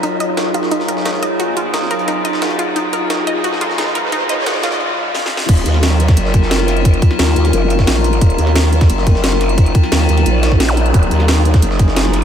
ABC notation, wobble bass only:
X:1
M:4/4
L:1/8
Q:1/4=176
K:Ebm
V:1 name="Wobble bass" clef=bass
z8 | z8 | z8 | z8 |
E,,, E,,3 G,,,4- | G,,, z E,, E,, G,,,2 B,,,2 | E,,, E,,3 G,,,4- | G,,, z E,, E,, B,,,4 |
E,,, E,,3 G,,,4 |]